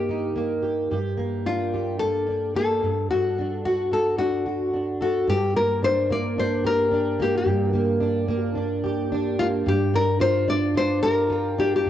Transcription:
Already playing: steel-string acoustic guitar G2 A#3 G4, nylon-string guitar G4
0.09 steel-string acoustic guitar D#4
0.36 steel-string acoustic guitar A#3
0.63 steel-string acoustic guitar G4
0.91 steel-string acoustic guitar G2 G4
1.17 steel-string acoustic guitar A#3
1.46 steel-string acoustic guitar D4, nylon-string guitar F4
1.74 steel-string acoustic guitar G4
1.99 steel-string acoustic guitar A#3, nylon-string guitar A4
2.28 steel-string acoustic guitar D4
2.55 steel-string acoustic guitar A#3, nylon-string guitar A4
2.82 steel-string acoustic guitar G2
3.11 steel-string acoustic guitar G2 A4, nylon-string guitar F#4
3.39 steel-string acoustic guitar D4
3.65 nylon-string guitar F#4, steel-string acoustic guitar F#4
3.92 steel-string acoustic guitar A4, nylon-string guitar A4
4.18 steel-string acoustic guitar D4, nylon-string guitar F#4
4.46 steel-string acoustic guitar F#4
4.74 steel-string acoustic guitar D4
5.01 nylon-string guitar F#4, steel-string acoustic guitar A4
5.27 steel-string acoustic guitar G2, nylon-string guitar G4
5.56 steel-string acoustic guitar A#3, nylon-string guitar A#4
5.83 steel-string acoustic guitar D4, nylon-string guitar C5
6.10 steel-string acoustic guitar A#3, nylon-string guitar D5
6.38 steel-string acoustic guitar D4, nylon-string guitar C5
6.64 steel-string acoustic guitar G4, nylon-string guitar A#4
6.91 steel-string acoustic guitar D4
7.20 steel-string acoustic guitar A#3, nylon-string guitar G4
7.38 nylon-string guitar G4
7.46 steel-string acoustic guitar G2
7.73 steel-string acoustic guitar A#3
8.00 steel-string acoustic guitar D4
8.28 steel-string acoustic guitar A#3
8.43 nylon-string guitar F4
8.55 steel-string acoustic guitar D4
8.84 steel-string acoustic guitar G4
9.12 steel-string acoustic guitar D4
9.39 steel-string acoustic guitar A#3, nylon-string guitar F4
9.66 steel-string acoustic guitar G2, nylon-string guitar G4
9.94 steel-string acoustic guitar D4, nylon-string guitar A#4
10.20 steel-string acoustic guitar F4, nylon-string guitar C5
10.48 steel-string acoustic guitar D4, nylon-string guitar D5
10.74 steel-string acoustic guitar F4, nylon-string guitar C5
11.03 steel-string acoustic guitar G4, nylon-string guitar A#4
11.30 steel-string acoustic guitar F4
11.58 steel-string acoustic guitar D4, nylon-string guitar G4
11.76 nylon-string guitar G4
11.86 steel-string acoustic guitar G2

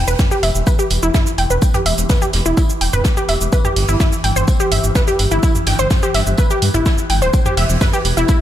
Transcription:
Already playing: synth drone E2 E3
0.08 detuned saw bass E1, synth pluck B4, shaker
0.19 kick, snare, mid tom, tambourine, shaker
0.31 synth pluck G4, shaker
0.43 detuned saw bass E1, synth pluck E5, open hi-hat, tambourine
0.55 detuned saw bass E1, shaker
0.67 synth pluck B4, kick, tambourine, shaker
0.79 synth pluck G4, shaker
0.90 detuned saw bass E1, open hi-hat, tambourine
1.03 detuned saw bass E1, synth pluck E4, shaker
1.14 synth pluck E4, kick, snare, mid tom, tambourine, shaker
1.26 closed hi-hat, shaker
1.38 detuned saw bass E1, synth pluck G5, open hi-hat, tambourine
1.50 detuned saw bass E1, synth pluck B4, shaker
1.62 kick, tambourine, shaker
1.74 synth pluck G4, closed hi-hat, mid tom, shaker
1.86 detuned saw bass E1, synth pluck E5, open hi-hat, tambourine
1.98 detuned saw bass E1, closed hi-hat, shaker
2.09 synth pluck B4, kick, snare, mid tom, tambourine, shaker
2.22 synth pluck G4, shaker
2.33 detuned saw bass E1, snare, open hi-hat, tambourine
2.46 detuned saw bass E1, synth pluck E4, shaker
2.57 synth pluck E4, kick, tambourine, shaker
2.69 shaker
2.81 detuned saw bass E1, synth pluck G5, open hi-hat, tambourine
2.93 detuned saw bass E1, synth pluck B4, closed hi-hat, mid tom, shaker
3.04 kick, snare, tambourine, shaker
3.17 synth pluck G4, shaker
3.28 detuned saw bass E1, synth pluck E5, open hi-hat, tambourine
3.41 detuned saw bass E1, closed hi-hat, shaker
3.53 synth pluck B4, kick, tambourine, shaker
3.65 synth pluck G4, mid tom, shaker
3.76 detuned saw bass G1, open hi-hat
3.89 detuned saw bass G1, synth pluck E4, shaker
4.00 synth pluck E4, kick, snare, mid tom, tambourine, shaker
4.12 shaker
4.24 detuned saw bass G1, synth pluck G5, open hi-hat, tambourine
4.36 detuned saw bass G1, synth pluck C5, shaker
4.48 kick, tambourine, shaker
4.60 synth pluck G4, shaker
4.72 detuned saw bass G1, synth pluck E5, open hi-hat, tambourine
4.84 detuned saw bass G1, shaker
4.95 synth pluck B4, kick, snare, mid tom, tambourine, shaker
5.07 synth pluck G4, closed hi-hat, shaker
5.19 detuned saw bass G1, open hi-hat, tambourine
5.31 detuned saw bass G1, synth pluck E4, shaker
5.43 synth pluck E4, kick, tambourine, shaker
5.55 mid tom, shaker
5.67 detuned saw bass G1, synth pluck G5, snare, open hi-hat, tambourine
5.79 detuned saw bass G1, synth pluck C5, closed hi-hat, shaker
5.90 kick, snare, mid tom, tambourine, shaker
6.03 synth pluck G4, shaker
6.14 detuned saw bass G1, synth pluck E5, snare, open hi-hat, tambourine
6.27 detuned saw bass G1, shaker
6.37 synth pluck B4, kick, tambourine, shaker
6.50 synth pluck G4, shaker
6.62 detuned saw bass G2, open hi-hat, tambourine
6.74 detuned saw bass G1, synth pluck E4, closed hi-hat, mid tom, shaker
6.86 synth pluck E4, kick, snare, tambourine, shaker
6.98 shaker
7.10 detuned saw bass G1, synth pluck G5, open hi-hat, tambourine
7.22 detuned saw bass D1, synth pluck C5, closed hi-hat, shaker
7.34 kick, tambourine, shaker
7.46 synth pluck G4, mid tom, shaker
7.57 detuned saw bass E1, synth pluck E5, open hi-hat
7.70 detuned saw bass E1, shaker
7.81 synth pluck B4, kick, snare, mid tom, tambourine, shaker
7.93 synth pluck G4, shaker
8.05 detuned saw bass E1, open hi-hat, tambourine
8.17 detuned saw bass E1, synth pluck E4, shaker
8.28 synth pluck E4, kick, tambourine, shaker

